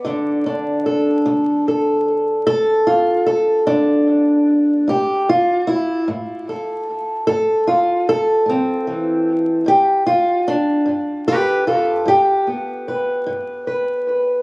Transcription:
steel-string acoustic guitar
Already playing: D5
0.05 D2 D3 D4
0.46 D4
0.86 A4
1.26 D2
1.68 A4
2.47 D2 A4
2.87 F4
3.26 A4
3.67 D2 D4
4.88 A2 G4
5.29 F4
5.67 E4
6.08 A2
6.49 A4
7.27 A2 A4
7.67 F4
8.09 A4
8.46 A2 C4
8.87 E3
9.66 G2 G4
10.06 F4
10.48 D4
10.86 G2
11.28 G4 B4
11.67 F4 A4
12.06 G2 G4
12.47 B3
12.88 B4
13.26 G2
13.67 B4

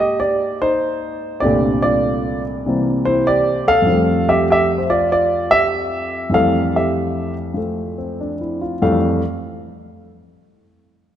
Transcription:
grand piano
Already playing: G#2 G#3 A#3 C4
0.00 G4 D#5
0.20 G4 D5
0.62 D#4 C5
1.40 C2 G2 D3 G4 D5
1.45 A#2 A3 D4
1.82 F4 D5
2.66 C3 E3 G3 A#3 C4
3.05 E4 C5
3.27 G4 D5
3.68 A4 F5
3.82 F2
3.86 F3 G3
3.93 A3
4.29 G4 E5
4.50 G4 E5
4.78 C5
4.90 F4 D5
5.12 F4 D5
5.51 G4 E5
6.30 F2 E3 G3
6.34 A3 A4 F5
6.76 G4 E5
7.54 F3 A3
7.98 C4
8.20 D4
8.41 E4
8.61 F4
8.82 F2 E3 G3 A3 F5

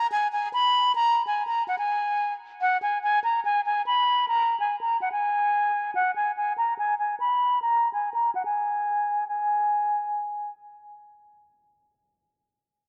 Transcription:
flute
0.12 G#5
0.32 G#5
0.53 B5
0.95 A#5
1.27 G#5
1.47 A#5
1.68 F#5
1.78 G#5
2.61 F#5
2.82 G#5
3.03 G#5
3.24 A#5
3.45 G#5
3.66 G#5
3.86 B5
4.28 A#5
4.60 G#5
4.81 A#5
5.02 F#5
5.12 G#5
5.95 F#5
6.16 G#5
6.37 G#5
6.58 A#5
6.79 G#5
6.99 G#5
7.20 B5
7.62 A#5
7.94 G#5
8.14 A#5
8.35 F#5
8.45 G#5
9.28 G#5

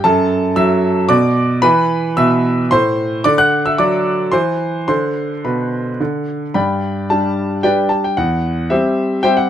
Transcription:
grand piano
0.04 F#2 A4 A5
0.56 F#3 E5 E6
1.09 B2 D5 D6
1.62 E3 B4 B5
2.17 B2 E5 E6
2.71 A2 C5 C6
3.24 D3 D5 D6
3.38 F#5 F#6
3.66 E5 E6
3.78 F#3 D5 D6
4.32 E3 C5 C6
4.88 D3 C5 C6
5.45 B2 B4 B5
6.00 D3
6.54 G2 D5 G5 B5
7.10 G3 D4 G4 A5
7.63 G3 D4 G4 B4 D5 G5
7.89 A5
8.04 G5
8.17 E2 F#5
8.70 G3 C4 G4 C5 E5
9.23 G3 C4 G4 C5 E5 G5
9.37 F#5

